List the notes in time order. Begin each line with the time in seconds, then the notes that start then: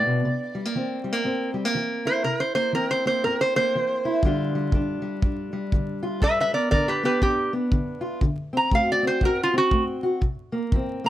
Already playing: B3 D4 D5
0.06 B2
0.25 C3
0.55 G3
0.65 A#3
0.75 E3 C4
1.04 G3
1.12 A#3
1.24 G2 C4
1.54 G3
1.65 A#3
1.75 E3
2.05 E4 C5
2.24 C3 A#4
2.40 C5
2.55 A#3 C5
2.73 E3 C4 A#4
2.91 C5
3.06 A#3 C5
3.24 G2 C4 A#4
3.41 C5
3.56 A#3 C5
3.75 E3
4.05 E4
4.23 G2 D3 G3 D4 F4, kick
4.55 G3
4.72 D3 D4, kick
5.02 G3
5.22 G2 D4, kick
5.53 G3
5.72 D3, kick
6.03 F4
6.20 G2 B4 E5, kick
6.40 B4 E5
6.53 B3 A#4 D5
6.71 D3 D4 A#4 D5, kick
6.88 G4 B4
7.03 B3 G4 B4
7.22 G2 D4 G4, kick
7.53 B3
7.72 D3, kick
8.01 F4
8.21 D3, kick
8.53 C4
8.57 A#5
8.71 A3 F#4 F5, kick
8.92 D5
9.03 C4
9.07 C5
9.21 A2 F#4 A#4, kick
9.43 F4
9.54 C4
9.58 F#4
9.71 A3, kick
10.03 F#4
10.21 C3, kick
10.52 A#3
10.72 E3 C4, kick
11.04 A#3